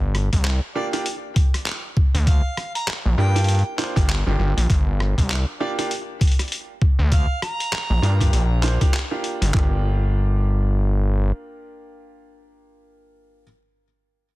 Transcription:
Already playing: analog synth bass G1
0.15 cross-stick, closed hi-hat
0.33 analog synth bass C2, kick, closed hi-hat
0.45 cross-stick, clap, closed hi-hat
0.75 grand piano A#3 D4 F4 G4, harmonica D5
0.93 grand piano A#3 D4 F4 G4, harmonica D5, closed hi-hat
1.06 closed hi-hat
1.36 kick, closed hi-hat
1.54 cross-stick, closed hi-hat
1.66 clap, closed hi-hat
1.97 kick
2.15 analog synth bass D2, closed hi-hat
2.27 harmonica F5, kick, closed hi-hat
2.57 cross-stick, closed hi-hat
2.75 harmonica A#5, closed hi-hat
2.88 cross-stick, clap, closed hi-hat
3.06 analog synth bass A#1
3.18 analog synth bass G2, grand piano A#3 D4 F4 G4, harmonica G5
3.35 grand piano A#3 D4 F4 G4, closed hi-hat
3.38 closed hi-hat
3.44 closed hi-hat
3.49 closed hi-hat
3.59 closed hi-hat
3.78 grand piano A#3 D4 F4 C5, clap, closed hi-hat
3.96 analog synth bass G1, grand piano A#3 D4 F4 G4, kick, closed hi-hat
4.10 clap, closed hi-hat
4.27 analog synth bass G1, grand piano A#3 D4 F4 G4
4.39 analog synth bass G1
4.57 analog synth bass A#1, closed hi-hat
4.70 analog synth bass G1, kick, closed hi-hat
5.00 cross-stick
5.18 analog synth bass C2, kick, closed hi-hat
5.30 cross-stick, clap, closed hi-hat
5.60 grand piano A#3 D4 F4 G4, harmonica D5
5.78 grand piano A#3 D4 F4 G4, harmonica D5, closed hi-hat
5.91 closed hi-hat
6.21 kick, closed hi-hat
6.27 closed hi-hat
6.32 closed hi-hat
6.39 cross-stick, closed hi-hat
6.42 closed hi-hat
6.48 closed hi-hat
6.52 closed hi-hat
6.82 kick
6.99 analog synth bass D2
7.12 harmonica F5, kick, closed hi-hat
7.42 harmonica A#5, cross-stick, closed hi-hat
7.60 closed hi-hat
7.73 cross-stick, clap, closed hi-hat
7.90 analog synth bass A#1
8.02 analog synth bass G2, grand piano A#3 D4 F4 G4, closed hi-hat
8.21 grand piano A#3 D4 F4 G4, kick, closed hi-hat
8.33 analog synth bass A#1, closed hi-hat
8.63 grand piano A#3 D4 F4 C5, clap, closed hi-hat
8.81 grand piano A#3 D4 F4 G4, kick, closed hi-hat
8.94 clap, closed hi-hat
9.11 grand piano A#3 D4 F4 G4
9.24 closed hi-hat
9.42 analog synth bass G1, closed hi-hat
9.54 analog synth bass G1, grand piano A#3 D4 F4 G4, kick, clap

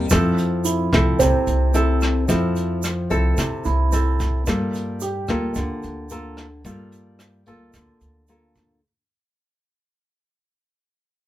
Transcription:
Already playing: grand piano A#4
0.09 upright bass F2, nylon-string guitar F3 C4 E4 A4, kick, cross-stick, closed hi-hat, shaker
0.37 closed hi-hat, shaker
0.65 grand piano E4, closed hi-hat, shaker
0.93 upright bass C2, nylon-string guitar C4 E4 A4, kick, cross-stick, closed hi-hat, shaker
1.19 upright bass C2, nylon-string guitar C3, grand piano C4, kick, closed hi-hat, shaker
1.47 upright bass C2, closed hi-hat, shaker
1.74 nylon-string guitar C4 E4 A4, closed hi-hat, shaker
2.01 cross-stick, closed hi-hat, shaker
2.28 upright bass F2, nylon-string guitar F3 C4 E4 A4, kick, closed hi-hat, shaker
2.56 closed hi-hat, shaker
2.83 cross-stick, closed hi-hat, shaker
3.10 upright bass C2, nylon-string guitar C4 E4 A4, closed hi-hat, shaker
3.37 upright bass C2, nylon-string guitar C3, kick, cross-stick, closed hi-hat, shaker
3.64 upright bass C2, grand piano E4, closed hi-hat, shaker
3.92 nylon-string guitar C4 E4 A4, closed hi-hat, shaker
4.20 kick, closed hi-hat, shaker
4.46 upright bass G2, nylon-string guitar G3 A#3 F4 A4, kick, cross-stick, closed hi-hat, shaker
4.74 closed hi-hat, shaker
5.00 grand piano G4, closed hi-hat, shaker
5.27 upright bass D2, nylon-string guitar A#3 F4 A4, kick, cross-stick, closed hi-hat, shaker
5.55 upright bass D2, nylon-string guitar D3, kick, closed hi-hat, shaker
5.83 upright bass D2, closed hi-hat, shaker
6.09 nylon-string guitar A#3 F4 A4, closed hi-hat, shaker
6.37 cross-stick, closed hi-hat, shaker
6.64 upright bass G2, nylon-string guitar G3 A#3 F4 A4, kick, closed hi-hat, shaker
6.92 closed hi-hat, shaker
7.19 cross-stick, closed hi-hat, shaker
7.46 upright bass D2, nylon-string guitar A#3 F4 A4, closed hi-hat, shaker
7.73 upright bass D2, nylon-string guitar D3, kick, cross-stick, closed hi-hat, shaker
8.01 upright bass D2, closed hi-hat, shaker
8.27 nylon-string guitar A#3 F4 A4, closed hi-hat, shaker
8.55 kick, closed hi-hat, shaker

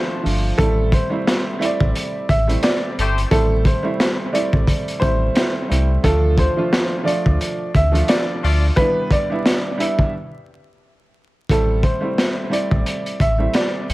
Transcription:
Already playing: grand piano F3 A3 D4 F4, upright piano C5
0.23 sub bass G1, grand piano F3 A3 D4 F4, open hi-hat
0.58 sub bass A1, grand piano G3 A3 C4 E4, upright piano A4, kick, closed hi-hat
0.92 upright piano C5, kick, closed hi-hat
1.10 grand piano G3 A3 C4 E4
1.27 snare, closed hi-hat
1.59 grand piano G3 A3 C4 E4, closed hi-hat
1.65 upright piano D5
1.80 sub bass A1, kick
1.95 closed hi-hat
2.29 sub bass A1, upright piano E5, kick, closed hi-hat
2.48 grand piano G3 A3 C4 E4, closed hi-hat
2.63 upright piano D5, snare, closed hi-hat
2.98 sub bass G1, horn section A3 G4 C5, closed hi-hat
3.18 closed hi-hat
3.31 sub bass A1, grand piano G3 A3 C4 E4, upright piano A4, kick, closed hi-hat
3.65 upright piano C5, kick, closed hi-hat
3.83 grand piano G3 A3 C4 E4
4.00 snare, closed hi-hat
4.33 grand piano G3 A3 C4 E4, upright piano D5, closed hi-hat
4.53 sub bass A1, kick
4.67 kick, closed hi-hat
4.88 closed hi-hat
5.00 sub bass A1, grand piano G3 A3 C4 E4, upright piano C5, kick, closed hi-hat
5.34 grand piano G3 A3 C4 E4, snare, closed hi-hat
5.68 sub bass C2, grand piano G3 A3 C4 E4, closed hi-hat
6.03 sub bass D2, grand piano F3 A3 D4 F4, upright piano A4, kick, closed hi-hat
6.38 upright piano C5, kick, closed hi-hat
6.57 grand piano F3 A3 D4 F4
6.73 snare, closed hi-hat
7.03 grand piano F3 A3 D4 F4, upright piano D5
7.08 closed hi-hat
7.26 sub bass D2, kick
7.41 closed hi-hat
7.75 sub bass D2, upright piano E5, kick, closed hi-hat
7.92 grand piano F3 A3 D4 F4, closed hi-hat
8.08 upright piano D5, snare, closed hi-hat
8.43 sub bass D2, horn section A3 F4 D5, open hi-hat
8.76 grand piano G3 B3 D4 E4, upright piano B4, kick, closed hi-hat
9.11 upright piano D5, kick, closed hi-hat
9.30 grand piano G3 B3 D4 E4
9.46 snare, closed hi-hat
9.78 grand piano G3 B3 D4 E4, upright piano E5, closed hi-hat
9.99 kick
11.49 sub bass A1, grand piano G3 A3 C4 E4, upright piano A4, kick, closed hi-hat
11.83 upright piano C5, kick, closed hi-hat
12.01 grand piano G3 A3 C4 E4
12.18 snare, closed hi-hat
12.50 grand piano G3 A3 C4 E4, upright piano D5, closed hi-hat
12.71 sub bass A1, kick
12.86 closed hi-hat
13.06 closed hi-hat
13.20 sub bass A1, upright piano E5, kick, closed hi-hat
13.39 grand piano G3 A3 C4 E4
13.54 upright piano D5, snare, closed hi-hat
13.89 sub bass G1, closed hi-hat

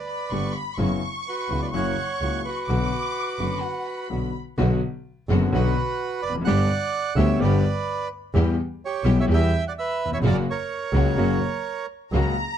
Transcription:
Already playing: bandoneon B4 D5
0.08 violin section B5
0.31 double bass G1, grand piano G1 G2 D3 G3 B3 G4, string section B3 D4 G4, violin section C#6
0.54 violin section B5
0.78 double bass F#1, grand piano F#2 C#3 F#3 B3 E4, string section B3 E4 F#4, violin section C#6
1.28 bandoneon F#4 B4
1.49 double bass C#2, grand piano C#2 C#3 F#3 B3 E4, string section B3 E4 F#4
1.62 bandoneon B4 D5
1.72 double bass F#1, grand piano F#2 C#3 F#3 A#3 E4, string section A#3 E4 F#4, bandoneon F#5, violin section C#6
1.76 bandoneon C#5
2.20 double bass C#2, grand piano C#2 C#3 F#3 A#3 E4, string section A#3 E4 F#4
2.45 bandoneon F#4 B4
2.66 double bass B1, grand piano B1 D3 F#3 F#4, string section B3 D4 F#4, violin section D6
2.70 grand piano B2 B3
3.39 double bass F#1, grand piano F#1 F#2 D3 F#3 B3 F#4, string section B3 D4 F#4
3.61 violin section F#5
3.86 violin section B5
4.09 grand piano B1 B2 D3 F#3 B3 F#4, double bass B1, string section B3 D4 F#4
4.58 double bass B1, grand piano B1 B2 D3 F#3 B3 F#4, string section B3 D4 F#4
5.29 double bass F#1, grand piano F#1 F#2 D3 F#3 B3 F#4, string section B3 D4 F#4
5.52 double bass B1, grand piano B1 B2 D3 F#3 B3 F#4, string section B3 D4 F#4, bandoneon F#4 B4
6.22 double bass F1, bandoneon B4 D5
6.29 grand piano E2
6.35 grand piano F2
6.41 double bass G1, grand piano F#2, bandoneon F#5
6.46 grand piano G1 G2 D3 G3 B3 G4, string section B3 D4 G4, bandoneon D5
7.16 double bass D2, grand piano D2 D3 G3 B3 G4, string section B3 D4 G4, bandoneon C#5 E5
7.39 grand piano G1 G2 D3 G3 B3 G4, double bass G1, string section B3 D4 G4, bandoneon D5
7.44 bandoneon B4
8.34 double bass E2, grand piano E2 E3 G3 B3 G4, string section B3 E4 G4
8.85 bandoneon G4 C#5
9.04 double bass B1, grand piano B1 B2 E3 G3 B3 G4, string section B3 E4 G4
9.20 bandoneon C#5 E5
9.28 grand piano E2 E3 G3 B3 G4, double bass E2, string section B3 E4 G4
9.34 bandoneon E5 G5
9.68 bandoneon D5 F#5
9.79 bandoneon B4 E5
10.05 grand piano D#2
10.12 grand piano E2, bandoneon C#5 E5
10.17 grand piano F2
10.23 double bass F#1, grand piano F#2 C#3 F#3 A#3 F#4, string section A#3 C#4 F#4
10.27 bandoneon A#4 D5
10.50 bandoneon A#4 C#5
10.93 double bass C#2, grand piano C#2 C#3 F#3 A#3 F#4, string section A#3 C#4 F#4
11.17 double bass F#1, grand piano F#2 C#3 F#3 A#3 F#4, string section A#3 C#4 F#4
12.12 double bass C#2, grand piano C#2 C#3 F#3 A#3 F#4, string section A#3 C#4 F#4, violin section A#5

